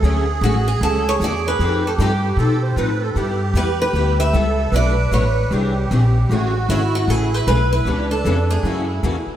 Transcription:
X:1
M:4/4
L:1/8
Q:"Swing" 1/4=153
K:A
V:1 name="Steel-string acoustic guitar"
z2 F G A c d B- | B A =G4 z2 | z2 B B2 e3 | d2 c2 z4 |
z2 E F G B B B- | B A2 G4 z |]
V:2 name="Accordion"
G8 | =G4 A =c B A | =G6 A2 | B4 =G4 |
F4 E4 | D4 E3 z |]
V:3 name="Steel-string acoustic guitar"
[D,F,A,CF] z [D,F,A,CF] z [D,F,A,CF] z [D,F,A,CF] z | [=F,=C_EA] z [F,CEA] z [F,CEA] z [F,CEA] z | [=G,B,E=G] z [G,B,EG] z [G,B,EG] z [G,B,EG] z | [B,,F,A,DF] z [B,,F,A,DF] z [E,^B,DG] z [E,B,DG] z |
[C,E,A,CG] z [C,E,A,CG] z [C,E,A,CG] z [C,E,A,CG] z | [C,E,B,C=G] z [C,E,B,CG] z [C,E,^A,CF] z [C,E,A,CF] z |]
V:4 name="Upright bass" clef=bass
D,,2 A,,,2 C,,2 E,,2 | =F,,2 =G,,2 B,,2 A,,2 | =G,,2 E,,2 D,,2 C,,2 | B,,,2 A,,,2 ^B,,,2 _B,,,2 |
A,,,2 G,,,2 A,,,2 B,,,2 | C,,2 =F,,2 ^F,,2 E,, z |]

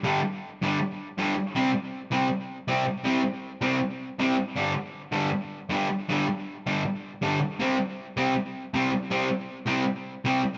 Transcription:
X:1
M:4/4
L:1/8
Q:1/4=158
K:Clyd
V:1 name="Distorted electric guitar" clef=bass
[G,,D,G,] z2 [G,,D,G,] z2 [G,,D,G,] z | [C,G,C] z2 [C,G,C] z2 [C,G,C] z | [C,G,C] z2 [C,G,C] z2 [C,G,C] z | [G,,D,G,] z2 [G,,D,G,] z2 [G,,D,G,] z |
[G,,D,G,] z2 [G,,D,G,] z2 [G,,D,G,] z | [C,G,C] z2 [C,G,C] z2 [C,G,C] z | [C,G,C] z2 [C,G,C] z2 [C,G,C] z |]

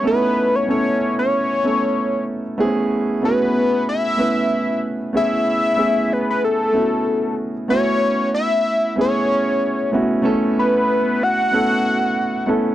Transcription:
X:1
M:4/4
L:1/16
Q:"Swing 16ths" 1/4=94
K:A
V:1 name="Analog synth lead"
B3 c c3 c6- c z2 | z4 B4 e6 z2 | e6 B B A6 z2 | c4 e4 c6 z2 |
z2 B4 f8 z2 |]
V:2 name="Grand piano"
[A,B,C^DEA]4 [A,B,CEA]4 z2 [A,B,CEA]4 z2 | [A,B,=C^CEG]4 [A,B,CEF]4 z2 [A,B,CEB]4 z2 | [A,B,CEG]4 [A,B,CEG]4 z2 [A,B,CEF]4 z2 | [A,B,CEF]6 z2 [A,B,CEG]4 z2 [A,B,CEF]2 |
[A,B,CEA]6 z2 [A,B,CEA]4 z2 [A,B,CEA]2 |]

